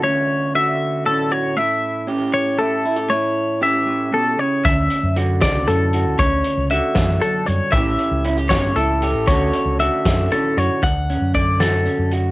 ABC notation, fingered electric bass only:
X:1
M:6/8
L:1/16
Q:3/8=78
K:D
V:1 name="Fingered electric bass" clef=bass
z12 | z12 | z12 | D,,2 z F,,3 C,,2 F,,3 D,, |
D,,2 z C,,2 z F,,2 z2 F,, z | A,,,2 z C,,3 G,,,2 C,,3 A,,, | D,,2 z C,,2 z F,,2 z2 F,, z | D,,3 F,,6 F,,3 |]